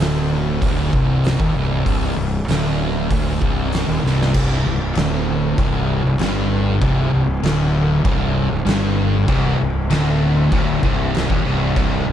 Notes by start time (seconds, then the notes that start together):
0.00 D1 D2, snare, open hi-hat
0.62 D1 D2, kick, open hi-hat
0.93 C1 C2, kick
1.24 snare, open hi-hat
1.40 D#1 D#2, kick
1.55 C1 C2
1.86 C1 C2, kick, open hi-hat
2.17 C1 C2
2.48 D1 D2, snare, open hi-hat
3.10 D1 D2, kick, open hi-hat
3.41 C1 C2, kick
3.73 snare, open hi-hat
3.88 D#1 D#2
4.04 C1 C2, snare
4.22 snare
4.34 C1 C2, kick, crash
4.66 C1 C2
4.95 D1 D2, snare, crash
5.58 C1 C2, kick, crash
6.04 C1 C2
6.19 G1 G2, snare, crash
6.81 C1 C2, kick, crash
7.12 C1 C2
7.43 D1 D2, snare, crash
8.04 C1 C2, kick, crash
8.50 C1 C2
8.66 G1 G2, snare, crash
9.27 C1 C2, kick, crash
9.58 C1 C2
9.90 D1 D2, snare, crash
10.52 D1 D2, kick, crash
10.83 C1 C2, kick
11.14 snare, crash
11.29 D#1 D#2, kick
11.45 C1 C2
11.76 C1 C2, kick, crash
12.06 C1 C2